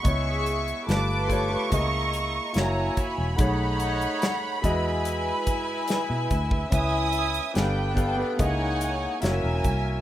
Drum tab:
HH |x-xxx-x-x-x-x-x-|x-xxx-x-x-x-x-x-|x-xxx-x-x-x-x-x-|
SD |----o-------o---|----o-------o---|----o-------o---|
BD |o-----o-o-----o-|o-----o---o---oo|o-----o-o-----o-|